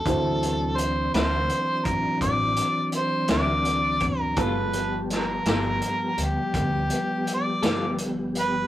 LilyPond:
<<
  \new Staff \with { instrumentName = "Harmonica" } { \time 12/8 \key d \dorian \tempo 4. = 55 a'4 c''8 c''4 bes'8 d''4 c''8 d''4 bes'8 | b'4 bes'4. g'4. d''4 r8 b'8 | }
  \new Staff \with { instrumentName = "Grand piano" } { \time 12/8 \key d \dorian <e' fis' c''>1. | <b f' a''>1. | }
  \new Staff \with { instrumentName = "Clean electric guitar" } { \time 12/8 \key d \dorian r4. <d fis c' e'>8 r2 r8 <d fis c' e'>8 r4 | <g b f' a'>8 r4 <g b f' a'>8 r2 r8 <g b f' a'>8 r4 | }
  \new Staff \with { instrumentName = "Tonewheel organ" } { \clef bass \time 12/8 \key d \dorian <e fis c' d'>1. | <fis aes a b>8 <f g b g'>1~ <f g b g'>4. | }
  \new Staff \with { instrumentName = "Upright bass" } { \clef bass \time 12/8 \key d \dorian d,4. d,8 r8 a,,16 r16 a,,8 r4 d,4. | g,,4. g,,8 r8 d,16 r16 d,8 r4 g,,4. | }
  \new DrumStaff \with { instrumentName = "Drums" } \drummode { \time 12/8 <hh bd>8 hh8 hh8 <hh sn>8 hh8 <hh bd>8 <hh bd>8 hh8 hh8 <hh sn>8 hh8 <hh bd>8 | <hh bd>8 hh8 <hh sn>8 <hh sn>8 hh8 hh8 <hh bd>8 hh8 hh8 <hh sn>8 hh8 hh8 | }
>>